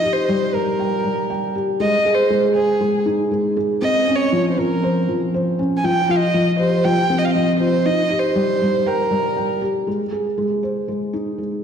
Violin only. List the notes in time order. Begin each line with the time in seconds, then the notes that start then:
Already playing: D#5
0.13 C5
0.54 A#4
1.81 D#5
2.15 C5
2.56 G#4
3.82 D#5
4.16 C#5
4.51 C5
4.59 A#4
5.77 G#5
5.84 G5
6.11 F5
6.16 D#5
6.59 C5
6.84 G5
7.18 D#5
7.25 F5
7.31 D#5
7.60 C5
7.85 D#5
8.20 C5
8.88 A#4